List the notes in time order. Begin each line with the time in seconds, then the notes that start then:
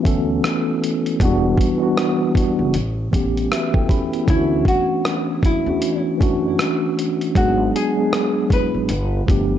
Already playing: E3 A3 B3 C#4 E4 F#4
0.02 D2 E3 A3 B3 C#4, kick
0.06 A4, closed hi-hat
0.44 cross-stick, closed hi-hat
0.84 closed hi-hat
1.06 closed hi-hat
1.20 E1 E3 G3 B3 D4, kick, closed hi-hat
1.25 F#4
1.58 kick, closed hi-hat
1.77 E3 G3 B3 D4
1.82 F#4
1.97 cross-stick, closed hi-hat
2.33 E3 G3 B3 D4, kick
2.37 F#4, closed hi-hat
2.59 F#1
2.74 A1, closed hi-hat
3.11 A1 E3 A3 B3 C#4, kick, closed hi-hat
3.16 G4
3.37 closed hi-hat
3.52 F#4 B4 E5, cross-stick, closed hi-hat
3.74 E4 A4 G5, kick
3.89 C#4 G4 B5, kick, closed hi-hat
4.13 B3 E4, closed hi-hat
4.26 D2 E3 A3 C#4 D4, kick, closed hi-hat
4.30 E4
4.36 F#4
4.65 F#4, kick, closed hi-hat
5.05 cross-stick, closed hi-hat
5.43 E4, kick, closed hi-hat
5.64 E2 E3 A3 C#4 D4
5.69 F#4
5.82 closed hi-hat
6.17 F#2 E3 A3 C#4 D4, kick
6.22 F#4, closed hi-hat
6.59 cross-stick, closed hi-hat
6.99 closed hi-hat
7.21 closed hi-hat
7.35 G#1 F#3 G#3 B3 D4 F#4, kick, closed hi-hat
7.39 G#4
7.76 G#4, closed hi-hat
7.96 F#3 G#3 B3 D4
8.00 G#4
8.13 cross-stick, closed hi-hat
8.48 F#3 G#3 B3 D4, kick, closed hi-hat
8.53 E4 B4
8.74 A1
8.89 G1, closed hi-hat
9.26 G1 F3 A3 B3 D4, kick, closed hi-hat
9.31 G4